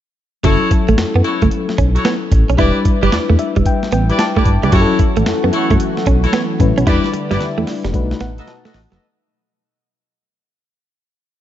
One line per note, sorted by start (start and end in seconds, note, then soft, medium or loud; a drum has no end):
0.44 0.57 F#1 loud
0.44 2.54 F#3 medium
0.44 0.54 F#3 medium
0.44 2.54 C#4 medium
0.44 0.69 E4 medium
0.44 2.55 E4 medium
0.44 0.69 F#4 medium
0.44 0.69 A4 medium
0.44 2.55 A4 medium
0.44 0.70 C#5 medium
0.44 kick loud
0.44 closed hi-hat medium
0.71 muted clean electric guitar stroke soft
0.71 kick loud
0.71 closed hi-hat medium
0.88 0.95 A1 medium
0.88 0.94 A3 medium
0.88 closed hi-hat medium
0.98 1.05 F#2 medium
0.98 snare loud
0.98 closed hi-hat medium
1.15 1.22 F#2 loud
1.15 1.21 B3 medium
1.24 1.44 E4 medium
1.24 1.44 F#4 medium
1.24 1.44 A4 medium
1.24 1.44 C#5 medium
1.24 muted clean electric guitar stroke soft
1.24 closed hi-hat medium
1.42 1.49 F#1 medium
1.42 1.48 A3 medium
1.42 kick medium
1.42 closed hi-hat soft
1.51 closed hi-hat medium
1.69 snare medium
1.78 1.98 B1 medium
1.78 1.88 C#4 medium
1.78 kick medium
1.78 closed hi-hat medium
1.95 2.09 E4 medium
1.95 2.09 F#4 medium
1.95 2.09 A4 medium
1.95 2.09 C#5 medium
1.95 closed hi-hat medium
2.05 2.15 B3 medium
2.05 snare loud
2.05 closed hi-hat medium
2.32 2.44 A1 loud
2.32 muted clean electric guitar stroke soft
2.32 kick loud
2.32 closed hi-hat medium
2.49 2.56 B1 medium
2.49 2.55 C#4 medium
2.49 closed hi-hat soft
2.57 2.71 E1 loud
2.57 4.68 G3 medium
2.57 4.68 D4 medium
2.57 2.78 E4 medium
2.57 2.69 E4 medium
2.57 4.69 E4 medium
2.57 2.78 G4 medium
2.57 2.78 B4 medium
2.57 4.69 B4 medium
2.57 2.78 D5 medium
2.57 kick loud
2.57 closed hi-hat medium
2.85 muted clean electric guitar stroke soft
2.85 kick loud
2.85 closed hi-hat medium
3.02 3.09 G1 medium
3.02 3.08 G3 medium
3.02 3.16 E4 medium
3.02 3.16 G4 medium
3.02 3.16 B4 medium
3.02 3.16 D5 medium
3.02 closed hi-hat medium
3.12 3.19 E2 soft
3.12 snare loud
3.12 closed hi-hat medium
3.30 3.36 E2 loud
3.30 3.35 A3 medium
3.39 3.64 E5 medium
3.39 muted clean electric guitar stroke soft
3.39 closed hi-hat medium
3.56 3.63 E1 loud
3.56 3.62 G3 medium
3.56 kick medium
3.56 closed hi-hat soft
3.65 3.91 G5 medium
3.65 kick medium
3.65 closed hi-hat medium
3.83 snare medium
3.92 4.12 A1 loud
3.92 4.02 B3 medium
3.92 4.18 G5 medium
3.92 closed hi-hat medium
4.09 4.23 E4 medium
4.09 4.23 G4 medium
4.09 4.23 B4 medium
4.09 4.23 D5 medium
4.09 closed hi-hat medium
4.19 4.69 A5 medium
4.19 snare loud
4.19 closed hi-hat medium
4.36 4.42 A3 medium
4.36 4.50 E4 medium
4.36 4.50 G4 medium
4.36 4.50 B4 medium
4.36 4.50 D5 medium
4.36 kick medium
4.45 4.58 G1 medium
4.45 muted clean electric guitar stroke soft
4.45 kick medium
4.45 closed hi-hat medium
4.63 4.70 C#2 medium
4.63 4.69 G3 medium
4.63 4.71 E4 medium
4.63 4.76 G4 medium
4.63 4.77 B4 medium
4.63 4.77 D5 medium
4.63 closed hi-hat soft
4.72 4.85 F#1 loud
4.72 6.85 E3 medium
4.72 6.56 F#3 medium
4.72 4.83 F#3 medium
4.72 6.85 A3 medium
4.72 6.57 C#4 medium
4.72 4.98 E4 loud
4.72 6.57 E4 medium
4.72 4.98 F#4 medium
4.72 6.85 F#4 medium
4.72 4.82 G4 medium
4.72 4.98 A4 medium
4.72 4.98 C#5 loud
4.72 kick loud
4.72 closed hi-hat medium
4.81 6.61 A4 medium
4.99 muted clean electric guitar stroke medium
4.99 kick loud
4.99 closed hi-hat medium
5.16 5.24 A1 medium
5.16 5.22 A3 medium
5.16 closed hi-hat medium
5.26 5.33 F#2 soft
5.26 snare loud
5.26 closed hi-hat medium
5.44 5.51 F#2 loud
5.44 5.49 B3 medium
5.53 5.73 E4 medium
5.53 5.73 F#4 medium
5.53 5.73 A4 medium
5.53 5.73 C#5 medium
5.53 muted clean electric guitar stroke soft
5.53 closed hi-hat medium
5.70 5.77 F#1 loud
5.70 5.76 A3 medium
5.70 kick medium
5.70 closed hi-hat soft
5.80 closed hi-hat medium
5.97 snare medium
6.06 6.26 B1 medium
6.06 6.17 C#4 medium
6.06 kick loud
6.06 closed hi-hat medium
6.24 6.37 E4 medium
6.24 6.37 F#4 medium
6.24 6.37 A4 medium
6.24 6.38 C#5 medium
6.24 closed hi-hat medium
6.33 6.43 B3 medium
6.33 snare loud
6.33 closed hi-hat medium
6.60 6.73 A1 loud
6.60 6.87 F#3 medium
6.60 6.87 C#4 medium
6.60 6.86 E4 soft
6.60 6.87 B4 medium
6.60 muted clean electric guitar stroke soft
6.60 kick medium
6.60 closed hi-hat medium
6.78 6.84 B1 medium
6.78 6.83 C#4 medium
6.78 closed hi-hat medium
6.86 7.00 E1 loud
6.86 7.93 D3 medium
6.86 7.91 G3 medium
6.86 7.93 G3 medium
6.86 7.92 D4 medium
6.86 6.97 E4 medium
6.86 7.07 E4 loud
6.86 7.93 E4 medium
6.86 7.92 E4 medium
6.86 7.07 G4 medium
6.86 7.07 B4 medium
6.86 7.93 B4 medium
6.86 7.07 D5 loud
6.86 kick loud
6.86 snare medium
6.86 closed hi-hat medium
7.04 snare medium
7.14 muted clean electric guitar stroke soft
7.14 closed hi-hat medium
7.31 7.38 G1 loud
7.31 7.36 G3 medium
7.31 7.44 E4 medium
7.31 7.45 G4 medium
7.31 7.45 B4 medium
7.31 7.45 D5 medium
7.31 snare medium
7.31 closed hi-hat medium
7.40 7.47 E2 soft
7.40 snare medium
7.40 closed hi-hat medium
7.58 7.65 E2 medium
7.58 7.63 A3 medium
7.67 muted clean electric guitar stroke soft
7.67 snare medium
7.67 open hi-hat medium
7.84 7.96 E1 medium
7.84 7.90 G3 medium
7.84 snare medium
7.84 closed hi-hat soft
7.93 8.13 B1 loud
7.93 9.00 B2 medium
7.93 8.99 A3 medium
7.93 9.00 A3 medium
7.93 8.02 D4 medium
7.93 9.00 D#4 medium
7.93 8.99 F#4 medium
7.93 9.00 B4 medium
7.93 kick medium
7.93 closed hi-hat medium
8.00 9.02 D#4 medium
8.11 snare medium
8.20 8.40 A1 medium
8.20 8.31 B3 medium
8.20 8.46 F#5 medium
8.20 snare medium
8.20 closed hi-hat medium
8.38 8.52 F#4 medium
8.38 8.52 A4 medium
8.38 8.52 B4 medium
8.38 8.52 D#5 medium
8.38 closed hi-hat medium
8.48 8.98 A5 medium
8.48 snare medium
8.48 closed hi-hat medium
8.65 8.71 A3 medium
8.65 8.78 F#4 medium
8.65 8.78 A4 medium
8.65 8.79 B4 medium
8.65 8.79 D#5 medium
8.65 snare medium
8.74 8.87 A1 medium
8.74 muted clean electric guitar stroke soft
8.74 snare loud
8.74 open hi-hat medium
8.92 8.99 F#1 medium
8.92 8.97 F#3 medium
8.92 9.05 F#4 medium
8.92 9.05 A4 medium
8.92 9.05 B4 medium
8.92 9.05 D#5 medium
8.92 snare medium
8.92 closed hi-hat medium